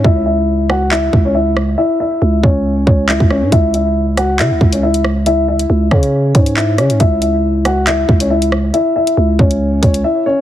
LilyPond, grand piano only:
\new Staff \with { instrumentName = "Grand piano" } { \time 4/4 \key cis \minor \tempo 4 = 138 <e' e''>8 <e' e''>4 <fis' fis''>8 <e' e''>8. <cis' cis''>16 <e' e''>8 r8 | <e' e''>8 <e' e''>4 <cis' cis''>4 <cis' cis''>8 <e' e''>8 <cis' cis''>8 | <e' e''>8 <e' e''>4 <fis' fis''>8 <e' e''>8. <cis' cis''>16 <e' e''>8 r8 | <e' e''>8 <e' e''>4 <cis' cis''>4 <cis' cis''>8 <e' e''>8 <cis' cis''>8 |
<e' e''>8 <e' e''>4 <fis' fis''>8 <e' e''>8. <cis' cis''>16 <e' e''>8 r8 | <e' e''>8 <e' e''>4 <cis' cis''>4 <cis' cis''>8 <e' e''>8 <cis' cis''>8 | }